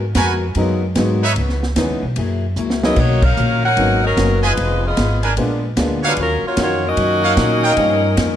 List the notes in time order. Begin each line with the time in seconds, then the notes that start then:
Already playing: G#2
0.15 F2 G#3 B3 F#4 A#4 B4 G#5, kick, snare, hi-hat pedal, ride
0.55 F#2 F#3 G#3 A#3 B3 D#4 F#4 A#4, kick, ride
0.95 G#2 F#3 G#3 A#3 B3 D#4 F#4 A#4, kick, snare, hi-hat pedal, ride
1.22 D#4 B4 C#5 E5
1.36 C#2 C#3 E3 B3 D#4, kick, ride
1.49 snare
1.63 snare
1.76 D#2 C#3 E3 G#3 B3 C#4 D#4, kick, snare, hi-hat pedal, ride
1.89 C#2
2.03 B1
2.16 F#2 F#3 A#3 E4 G#4, kick, ride
2.56 C#2 F#3 A#3 E4 G#4, hi-hat pedal
2.70 snare
2.83 F#3 A#3 B3 C#4 D#4 E4 G#4 D#5, snare
2.96 B1 B2 D#3 A#3 C#4 D#4 F#4 C#5, kick, crash
3.22 D#4 A#4 C#5 F5, kick, crash
3.37 A#1 B2 D#3 A#3 C#4, hi-hat pedal
3.65 D#4 A#4 C#5 F#5
3.77 G#1 B2 D#3 F#3 A#3 B3 C#4 D#4, kick, ride
4.04 F#3 C#4 D#4 A#4
4.17 F#1 B2 D#3 F#3 A#3 B3 C#4 F#4, kick, snare, hi-hat pedal, ride
4.43 G#3 D#4 F4 B4 D#5 G#5
4.57 F1 F3 B3 D#4 G#4, kick, ride
4.87 B3 F4 G#4 D#5
4.97 G#1 F3 B3 D#4 G#4, kick, snare, hi-hat pedal, ride
5.23 D4 A#4 B4 G#5, ride
5.37 A#1 A#2 G#3 A#3 B3 D4 F4, kick, ride
5.77 D2 A#2 G#3 A#3 B3 D4 F4, kick, snare, hi-hat pedal, ride
6.03 G#3 D4 D#4 F#4 B4 C#5 F5
6.07 F4
6.17 D#2 D#3 F#3 C#4 F4 A#4, kick, ride
6.21 F4
6.42 F4 F#4, muted upright bass stroke
6.47 A#3 C#5
6.57 F2 D#3 F#3 A#3 C#4 D#4 F4 F#4 F5, kick, snare, hi-hat pedal, ride
6.62 A#3 F4 F#4 C#5
6.85 F#3 A#3 C#4 D#4 F#4 A#4 D#5
6.97 F#2 D#3 F#3 C#4 F4, kick, ride
7.23 D#4 F#4 C#5 F5
7.37 A#2 D#3 F#3 C#4 F4, kick, snare, hi-hat pedal, ride
7.63 F4 A#4 C#5 G5
7.77 G2 F3 G3 A#3 C#4 F4 A#4, kick, ride
8.17 F2 G2 F3 A#3 C#4, kick, snare, hi-hat pedal, ride